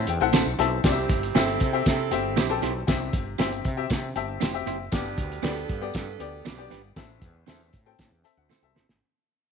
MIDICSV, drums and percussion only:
0, 0, Header, 1, 2, 480
1, 0, Start_track
1, 0, Tempo, 511073
1, 790, Time_signature, 4, 2, 24, 8
1, 8937, End_track
2, 0, Start_track
2, 0, Title_t, "Drums"
2, 65, Note_on_c, 9, 42, 78
2, 159, Note_off_c, 9, 42, 0
2, 309, Note_on_c, 9, 42, 114
2, 316, Note_on_c, 9, 38, 127
2, 323, Note_on_c, 9, 54, 95
2, 403, Note_off_c, 9, 42, 0
2, 410, Note_off_c, 9, 38, 0
2, 417, Note_off_c, 9, 54, 0
2, 551, Note_on_c, 9, 42, 70
2, 562, Note_on_c, 9, 38, 33
2, 645, Note_off_c, 9, 42, 0
2, 656, Note_off_c, 9, 38, 0
2, 788, Note_on_c, 9, 42, 83
2, 790, Note_on_c, 9, 36, 101
2, 794, Note_on_c, 9, 38, 121
2, 797, Note_on_c, 9, 54, 85
2, 882, Note_off_c, 9, 42, 0
2, 884, Note_off_c, 9, 36, 0
2, 888, Note_off_c, 9, 38, 0
2, 891, Note_off_c, 9, 54, 0
2, 1028, Note_on_c, 9, 36, 104
2, 1029, Note_on_c, 9, 42, 79
2, 1122, Note_off_c, 9, 36, 0
2, 1123, Note_off_c, 9, 42, 0
2, 1156, Note_on_c, 9, 42, 54
2, 1250, Note_off_c, 9, 42, 0
2, 1272, Note_on_c, 9, 42, 82
2, 1275, Note_on_c, 9, 38, 125
2, 1279, Note_on_c, 9, 54, 107
2, 1366, Note_off_c, 9, 42, 0
2, 1369, Note_off_c, 9, 38, 0
2, 1373, Note_off_c, 9, 54, 0
2, 1389, Note_on_c, 9, 42, 50
2, 1483, Note_off_c, 9, 42, 0
2, 1504, Note_on_c, 9, 42, 71
2, 1512, Note_on_c, 9, 36, 88
2, 1598, Note_off_c, 9, 42, 0
2, 1606, Note_off_c, 9, 36, 0
2, 1748, Note_on_c, 9, 42, 97
2, 1750, Note_on_c, 9, 36, 95
2, 1753, Note_on_c, 9, 54, 86
2, 1756, Note_on_c, 9, 38, 120
2, 1841, Note_off_c, 9, 42, 0
2, 1844, Note_off_c, 9, 36, 0
2, 1847, Note_off_c, 9, 54, 0
2, 1850, Note_off_c, 9, 38, 0
2, 1986, Note_on_c, 9, 42, 83
2, 2080, Note_off_c, 9, 42, 0
2, 2226, Note_on_c, 9, 42, 97
2, 2228, Note_on_c, 9, 54, 101
2, 2233, Note_on_c, 9, 38, 127
2, 2320, Note_off_c, 9, 42, 0
2, 2322, Note_off_c, 9, 54, 0
2, 2327, Note_off_c, 9, 38, 0
2, 2468, Note_on_c, 9, 42, 74
2, 2478, Note_on_c, 9, 38, 34
2, 2562, Note_off_c, 9, 42, 0
2, 2572, Note_off_c, 9, 38, 0
2, 2704, Note_on_c, 9, 54, 82
2, 2706, Note_on_c, 9, 36, 107
2, 2706, Note_on_c, 9, 42, 94
2, 2712, Note_on_c, 9, 38, 124
2, 2798, Note_off_c, 9, 54, 0
2, 2799, Note_off_c, 9, 42, 0
2, 2800, Note_off_c, 9, 36, 0
2, 2806, Note_off_c, 9, 38, 0
2, 2940, Note_on_c, 9, 42, 85
2, 2943, Note_on_c, 9, 36, 107
2, 3034, Note_off_c, 9, 42, 0
2, 3037, Note_off_c, 9, 36, 0
2, 3177, Note_on_c, 9, 54, 92
2, 3188, Note_on_c, 9, 42, 81
2, 3190, Note_on_c, 9, 38, 110
2, 3271, Note_off_c, 9, 54, 0
2, 3281, Note_off_c, 9, 42, 0
2, 3284, Note_off_c, 9, 38, 0
2, 3308, Note_on_c, 9, 42, 52
2, 3402, Note_off_c, 9, 42, 0
2, 3425, Note_on_c, 9, 42, 72
2, 3430, Note_on_c, 9, 36, 94
2, 3519, Note_off_c, 9, 42, 0
2, 3524, Note_off_c, 9, 36, 0
2, 3661, Note_on_c, 9, 54, 94
2, 3667, Note_on_c, 9, 36, 87
2, 3668, Note_on_c, 9, 42, 104
2, 3676, Note_on_c, 9, 38, 106
2, 3755, Note_off_c, 9, 54, 0
2, 3761, Note_off_c, 9, 36, 0
2, 3761, Note_off_c, 9, 42, 0
2, 3770, Note_off_c, 9, 38, 0
2, 3903, Note_on_c, 9, 42, 77
2, 3997, Note_off_c, 9, 42, 0
2, 4141, Note_on_c, 9, 54, 90
2, 4150, Note_on_c, 9, 42, 107
2, 4156, Note_on_c, 9, 38, 121
2, 4235, Note_off_c, 9, 54, 0
2, 4244, Note_off_c, 9, 42, 0
2, 4250, Note_off_c, 9, 38, 0
2, 4388, Note_on_c, 9, 42, 69
2, 4482, Note_off_c, 9, 42, 0
2, 4619, Note_on_c, 9, 54, 91
2, 4626, Note_on_c, 9, 36, 113
2, 4629, Note_on_c, 9, 42, 80
2, 4635, Note_on_c, 9, 38, 118
2, 4713, Note_off_c, 9, 54, 0
2, 4720, Note_off_c, 9, 36, 0
2, 4723, Note_off_c, 9, 42, 0
2, 4729, Note_off_c, 9, 38, 0
2, 4863, Note_on_c, 9, 36, 107
2, 4868, Note_on_c, 9, 42, 75
2, 4957, Note_off_c, 9, 36, 0
2, 4962, Note_off_c, 9, 42, 0
2, 4994, Note_on_c, 9, 42, 52
2, 5088, Note_off_c, 9, 42, 0
2, 5097, Note_on_c, 9, 54, 103
2, 5112, Note_on_c, 9, 42, 85
2, 5115, Note_on_c, 9, 38, 117
2, 5191, Note_off_c, 9, 54, 0
2, 5206, Note_off_c, 9, 42, 0
2, 5209, Note_off_c, 9, 38, 0
2, 5227, Note_on_c, 9, 42, 54
2, 5321, Note_off_c, 9, 42, 0
2, 5346, Note_on_c, 9, 42, 75
2, 5349, Note_on_c, 9, 36, 98
2, 5440, Note_off_c, 9, 42, 0
2, 5443, Note_off_c, 9, 36, 0
2, 5575, Note_on_c, 9, 54, 87
2, 5586, Note_on_c, 9, 36, 96
2, 5588, Note_on_c, 9, 42, 96
2, 5596, Note_on_c, 9, 38, 110
2, 5669, Note_off_c, 9, 54, 0
2, 5680, Note_off_c, 9, 36, 0
2, 5682, Note_off_c, 9, 42, 0
2, 5690, Note_off_c, 9, 38, 0
2, 5823, Note_on_c, 9, 42, 73
2, 5917, Note_off_c, 9, 42, 0
2, 6060, Note_on_c, 9, 54, 105
2, 6066, Note_on_c, 9, 42, 111
2, 6073, Note_on_c, 9, 38, 122
2, 6154, Note_off_c, 9, 54, 0
2, 6160, Note_off_c, 9, 42, 0
2, 6167, Note_off_c, 9, 38, 0
2, 6304, Note_on_c, 9, 42, 65
2, 6315, Note_on_c, 9, 38, 36
2, 6398, Note_off_c, 9, 42, 0
2, 6409, Note_off_c, 9, 38, 0
2, 6540, Note_on_c, 9, 42, 97
2, 6541, Note_on_c, 9, 36, 112
2, 6541, Note_on_c, 9, 54, 93
2, 6546, Note_on_c, 9, 38, 114
2, 6634, Note_off_c, 9, 42, 0
2, 6635, Note_off_c, 9, 36, 0
2, 6635, Note_off_c, 9, 54, 0
2, 6640, Note_off_c, 9, 38, 0
2, 6778, Note_on_c, 9, 42, 78
2, 6779, Note_on_c, 9, 36, 102
2, 6872, Note_off_c, 9, 42, 0
2, 6873, Note_off_c, 9, 36, 0
2, 7021, Note_on_c, 9, 42, 84
2, 7022, Note_on_c, 9, 54, 107
2, 7023, Note_on_c, 9, 38, 119
2, 7114, Note_off_c, 9, 42, 0
2, 7116, Note_off_c, 9, 54, 0
2, 7117, Note_off_c, 9, 38, 0
2, 7140, Note_on_c, 9, 42, 51
2, 7234, Note_off_c, 9, 42, 0
2, 7258, Note_on_c, 9, 42, 75
2, 7266, Note_on_c, 9, 36, 89
2, 7352, Note_off_c, 9, 42, 0
2, 7360, Note_off_c, 9, 36, 0
2, 7501, Note_on_c, 9, 42, 83
2, 7505, Note_on_c, 9, 36, 80
2, 7506, Note_on_c, 9, 54, 83
2, 7509, Note_on_c, 9, 38, 105
2, 7595, Note_off_c, 9, 42, 0
2, 7599, Note_off_c, 9, 36, 0
2, 7600, Note_off_c, 9, 54, 0
2, 7603, Note_off_c, 9, 38, 0
2, 7746, Note_on_c, 9, 42, 76
2, 7840, Note_off_c, 9, 42, 0
2, 7993, Note_on_c, 9, 54, 96
2, 7995, Note_on_c, 9, 38, 59
2, 8087, Note_off_c, 9, 54, 0
2, 8089, Note_off_c, 9, 38, 0
2, 8230, Note_on_c, 9, 38, 74
2, 8324, Note_off_c, 9, 38, 0
2, 8352, Note_on_c, 9, 38, 81
2, 8446, Note_off_c, 9, 38, 0
2, 8937, End_track
0, 0, End_of_file